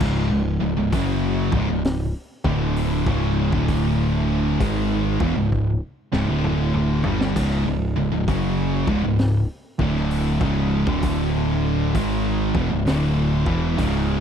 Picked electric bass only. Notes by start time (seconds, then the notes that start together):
0.01 C#1
0.31 C#1
0.61 C#1
0.77 C#1
0.93 F#1
1.53 C#1
1.70 C#1
2.45 D1
3.06 C#1
3.52 D1
4.60 G#1
5.21 E1
5.36 C#1
6.13 C#1
6.28 D1
7.04 G1
7.36 C#1
7.67 C#1
7.95 C#1
8.12 C#1
8.28 F#1
8.87 C#1
9.03 C#1
9.79 D1
10.41 C#1
10.87 D1
11.95 G#1
12.55 E1
12.71 C#1
12.88 D1
13.46 E1
13.78 C#1